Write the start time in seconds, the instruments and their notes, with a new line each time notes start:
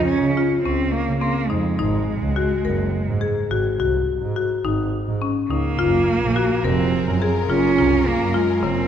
Already playing: double bass F2, marimba F4
0.06 cello C#4
0.22 double bass C#3
0.37 marimba F4
0.63 double bass C#2, cello C4, marimba C#4
0.92 cello A#3
1.08 double bass C#3
1.21 cello A#3, marimba C4
1.48 double bass F2, cello G#3, marimba D#4
1.79 double bass G#1, marimba D#4
2.21 double bass C#2
2.36 marimba F#4
2.65 double bass F#1, marimba A#4
3.07 double bass G#2
3.21 marimba G#4
3.51 double bass G#1, marimba F#4
3.79 double bass C2, marimba F#4
4.22 double bass G#2
4.36 marimba F#4
4.65 double bass G#1, marimba D#4
5.07 double bass G#2
5.22 marimba C#4
5.50 double bass C#2, cello A#3, marimba D#4
5.78 double bass F#1, string section F#3 F4 G#4 A#4, marimba F4
6.21 double bass A#1
6.36 marimba F#4
6.64 double bass F1, cello C4, marimba A#4
7.07 double bass F#2
7.22 marimba G#4
7.49 double bass F#1, cello C#4, marimba F4
7.77 double bass C2, marimba F4
8.07 cello A#3
8.20 double bass F#2
8.34 cello G#3, marimba F4
8.63 double bass F#1, marimba C#3, cello C4